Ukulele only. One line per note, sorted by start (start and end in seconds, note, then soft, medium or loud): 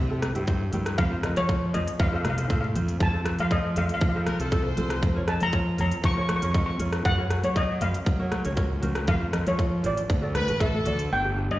0.10 0.25 E4 medium
0.10 0.25 G4 medium
0.10 0.25 A4 medium
0.35 0.42 E4 medium
0.35 0.43 G4 medium
0.35 0.43 C5 loud
0.47 0.63 E4 medium
0.47 0.63 G4 medium
0.47 0.64 C5 loud
0.72 0.95 E4 medium
0.72 0.96 G4 medium
0.72 0.96 A#4 medium
1.10 1.18 F4 medium
1.10 1.18 A#4 medium
1.10 1.19 C5 medium
1.23 1.39 F4 medium
1.23 1.39 A#4 medium
1.23 1.39 D#5 medium
1.48 1.64 F4 medium
1.48 1.65 A#4 medium
1.48 1.65 C5 medium
1.73 1.96 F4 medium
1.73 1.97 A#4 medium
1.73 1.97 C5 medium
2.11 2.27 F4 medium
2.11 2.27 A4 medium
2.11 2.28 C5 medium
2.37 2.45 F4 medium
2.37 2.45 A4 medium
2.37 2.46 C5 medium
2.49 2.65 F4 medium
2.49 2.65 A4 medium
2.49 2.66 C5 medium
2.74 2.98 F4 medium
2.74 2.98 A4 medium
2.74 2.98 C5 medium
3.12 3.20 F4 medium
3.12 3.20 A4 medium
3.12 3.21 C5 medium
3.24 3.41 F4 medium
3.24 3.41 A4 medium
3.24 3.41 C5 medium
3.51 3.66 F4 medium
3.51 3.67 A4 medium
3.51 3.67 C5 medium
3.76 3.99 F4 medium
3.76 3.99 A4 medium
3.76 4.00 C5 medium
4.15 4.30 F4 medium
4.15 4.30 A4 medium
4.15 4.30 C5 medium
4.40 4.47 F4 medium
4.40 4.48 A4 medium
4.40 4.48 C5 medium
4.51 4.67 F4 medium
4.51 4.68 A4 medium
4.51 4.68 C5 medium
4.77 5.00 F4 medium
4.77 5.00 A4 medium
4.77 5.01 C5 medium
5.15 5.23 F4 medium
5.15 5.23 A#4 medium
5.15 5.24 C#5 medium
5.27 5.43 F4 medium
5.27 5.44 A#4 medium
5.27 5.44 D#5 medium
5.52 5.69 F4 medium
5.52 5.69 A#4 medium
5.52 5.69 C#5 medium
5.78 6.01 F4 medium
5.78 6.02 A#4 medium
5.78 6.02 C#5 medium
6.16 6.31 F4 medium
6.16 6.32 A#4 medium
6.16 6.32 C#5 medium
6.41 6.49 F4 medium
6.41 6.50 A#4 medium
6.41 6.50 C#5 medium
6.54 6.70 F4 medium
6.54 6.70 A#4 medium
6.54 6.71 D#5 medium
6.79 7.03 F4 medium
6.79 7.03 A#4 medium
6.79 7.03 C#5 medium
7.17 7.25 F#4 medium
7.17 7.26 A#4 medium
7.17 7.26 C#5 medium
7.29 7.45 F#4 medium
7.29 7.46 A#4 medium
7.29 7.46 C#5 medium
7.55 7.71 F#4 medium
7.55 7.71 A#4 medium
7.55 7.72 C#5 medium
7.80 8.04 F#4 medium
7.80 8.04 A#4 medium
7.80 8.04 D#5 medium
8.19 8.34 F#4 medium
8.19 8.35 A#4 medium
8.19 8.35 C#5 medium
8.44 8.52 F#4 medium
8.44 8.52 A#4 medium
8.44 8.53 C#5 loud
8.55 8.72 F#4 medium
8.55 8.72 A#4 medium
8.55 8.73 C#5 loud
8.82 9.05 F#4 medium
8.82 9.06 A#4 medium
8.82 9.06 C5 medium
9.20 9.28 F4 medium
9.20 9.29 A#4 medium
9.20 9.29 C5 medium
9.32 9.49 F4 medium
9.32 9.49 A#4 medium
9.32 9.49 D#5 medium
9.57 9.74 F4 medium
9.57 9.74 A#4 medium
9.57 9.75 D#5 medium
9.83 10.07 F4 medium
9.83 10.07 A#4 medium
9.83 10.08 C5 medium
10.21 10.37 F#4 medium
10.21 10.37 A4 medium
10.21 10.38 D5 medium
10.47 10.55 F#4 medium
10.47 10.56 A4 medium
10.47 10.56 B4 loud
10.60 10.76 F#4 medium
10.60 10.76 A4 medium
10.60 10.77 E5 medium
10.85 11.09 F#4 medium
10.85 11.09 A4 medium
10.85 11.09 D5 loud
11.23 11.31 D4 medium
11.23 11.32 G4 medium
11.23 11.32 C5 medium
11.36 11.52 D4 medium
11.36 11.53 G4 medium
11.36 11.53 C5 medium